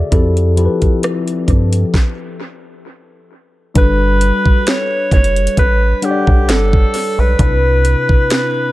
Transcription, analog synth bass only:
0.12 0.68 F2 loud
0.82 0.90 G2 medium
1.48 1.84 G2 medium
3.76 4.32 G1 loud
4.46 4.54 F#1 medium
5.12 5.48 F#1 loud
5.57 5.94 A1 medium
6.27 6.50 B1 medium
6.48 6.85 G1 loud
7.18 7.35 B1 loud
7.39 7.95 C2 loud
8.09 8.18 B1 medium

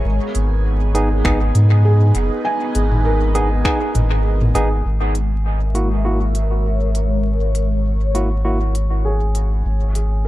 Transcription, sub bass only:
0.05 0.19 G#1 medium
0.35 1.22 G#1 medium
1.25 1.51 G#1 loud
1.55 2.12 G#2 medium
2.15 2.29 F#1 loud
2.75 3.62 G#1 medium
3.95 4.52 G#1 medium
4.55 4.82 G#1 medium
4.85 9.62 G#1 medium
9.65 10.28 G#1 medium

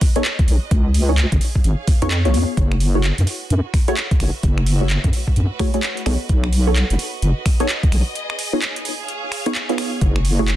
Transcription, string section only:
0.00 0.71 F#4 medium
0.00 1.47 B4 medium
0.00 1.47 D#5 medium
0.71 3.59 G#4 medium
1.14 3.29 C#5 medium
1.55 2.58 F5 medium
2.57 8.15 F#4 medium
3.03 8.91 B4 medium
4.16 6.06 E5 medium
7.00 8.91 D#5 medium
8.16 10.56 G#4 medium
8.98 10.56 C#5 medium
8.98 10.02 F5 medium
10.02 10.56 F#4 medium

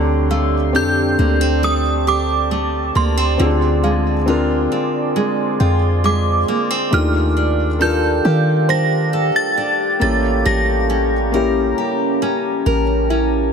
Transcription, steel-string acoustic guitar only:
0.00 3.38 D3 medium
0.00 0.34 G4 medium
0.31 1.62 A3 medium
0.75 2.06 G4 medium
1.19 1.41 A#3 medium
1.41 2.95 C4 medium
1.63 2.50 A3 medium
2.07 3.48 G4 medium
2.51 3.48 A3 medium
2.95 3.17 A#3 medium
3.17 3.48 C4 medium
3.39 6.92 D3 medium
3.84 5.15 G#3 medium
4.28 5.60 F4 medium
4.72 6.48 C4 medium
5.16 6.03 G#3 medium
5.60 8.24 F4 medium
6.04 7.01 G#3 medium
6.48 6.71 A#3 medium
6.71 7.01 C4 medium
6.93 10.10 D#3 medium
7.37 8.68 D4 medium
7.81 9.13 A4 medium
8.25 10.49 G4 medium
8.69 9.56 D4 medium
9.13 11.33 A4 medium
9.57 10.10 D4 medium
10.01 10.45 A3 medium
10.46 13.53 A3 medium
10.90 12.21 C#4 medium
11.34 12.65 A#4 medium
11.78 13.53 G4 medium
12.22 13.09 C#4 medium
12.66 13.53 A#4 medium
13.10 13.53 C#4 medium

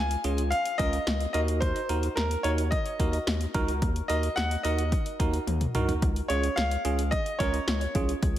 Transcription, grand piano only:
0.00 0.53 G#5 loud
0.50 0.77 F5 loud
0.78 1.30 D#5 loud
1.33 1.39 D#5 medium
1.60 2.12 C5 loud
2.16 2.42 A#4 medium
2.43 2.50 C#5 medium
2.71 3.23 D#5 medium
4.08 4.37 D#5 medium
4.36 4.65 F#5 loud
4.63 5.70 D#5 medium
6.28 6.57 C#5 medium
6.56 7.13 F5 loud
7.11 7.37 D#5 loud
7.39 7.90 C#5 medium

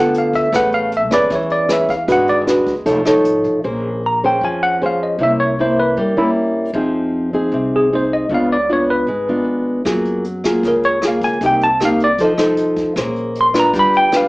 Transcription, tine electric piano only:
0.00 0.14 F#5 medium
0.18 0.35 F5 medium
0.36 0.53 E5 medium
0.56 0.73 F#5 medium
0.74 0.92 F5 medium
0.97 1.13 E5 medium
1.14 1.31 D5 medium
1.35 1.52 C#5 medium
1.52 1.70 D5 medium
1.73 1.90 E5 medium
1.90 2.08 F5 medium
2.12 2.29 F#5 loud
2.29 2.41 D5 medium
4.06 4.23 A#5 medium
4.26 4.43 G5 medium
4.45 4.62 G#5 medium
4.63 4.81 F#5 loud
4.86 5.02 F5 medium
5.03 5.20 D#5 medium
5.23 5.40 E5 medium
5.40 5.58 C#5 medium
5.61 5.78 C5 medium
5.79 5.97 B4 medium
6.01 6.18 A#4 medium
6.18 6.29 E4 medium
7.76 7.93 G#4 medium
7.95 8.12 C5 medium
8.13 8.31 D#5 medium
8.34 8.51 F5 medium
8.52 8.70 D5 medium
8.73 8.90 C#5 medium
8.90 9.44 B4 medium
10.68 10.84 A#4 medium
10.85 11.03 C#5 loud
11.08 11.24 F5 medium
11.24 11.42 G#5 medium
11.46 11.62 G5 medium
11.64 11.81 A5 loud
11.85 12.01 F5 medium
12.04 12.20 D5 medium
12.25 12.58 D#5 medium
13.41 13.57 C6 medium
13.60 13.76 A#5 medium
13.79 13.95 B5 medium
13.97 14.14 G5 loud
14.17 14.28 F5 medium

